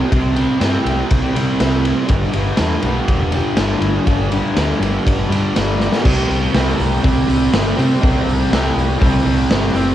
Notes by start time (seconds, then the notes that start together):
Already playing: C3 G3 C4
0.12 C2 C3 G3 C4, kick, ride
0.36 G3 C4, ride
0.60 G2 C3 G3 C4, snare, ride
0.84 C2 G3 C4, ride
1.10 C2, kick, ride
1.35 C3 G3 C4, ride
1.59 C2 C3 G3 C4, snare, ride
1.85 ride
2.08 G1 G2 D3 G3, kick, ride
2.33 G1 D3 G3, ride
2.57 E2 G2 D3 G3, snare, ride
2.82 B1 D3 G3, ride
3.08 E1, kick, ride
3.32 D3 G3, ride
3.56 G1 G2 D3 G3, snare, ride
3.81 G1, ride
4.06 G1 G2 D3 G3, kick, ride
4.31 D3 G3, ride
4.55 D2 G2 D3 G3, snare, ride
4.79 G1 D3 G3, ride
5.06 G1, kick, ride
5.29 G2 D3 G3, ride
5.54 G1 G2 D3 G3, snare, ride
5.80 snare
5.92 snare
6.03 C2 C3 G3 C4, kick, crash
6.30 C2, open hi-hat
6.53 C2 C3 G3 C4, snare, open hi-hat
6.79 C2, open hi-hat
7.02 C2 C3 G3 C4, kick, open hi-hat
7.27 C2 G3 C4, open hi-hat
7.53 G1, snare, open hi-hat
7.77 C3 G3 C4, open hi-hat
8.02 C2 C3 G3 C4, kick, open hi-hat
8.27 C2, open hi-hat
8.50 C2 C3 G3 C4, snare, open hi-hat
8.76 C2, open hi-hat
8.99 C2 C3 G3 C4, kick, open hi-hat
9.24 C2 G3 C4, open hi-hat
9.49 G1, snare, open hi-hat
9.74 F#1 G3 C4, open hi-hat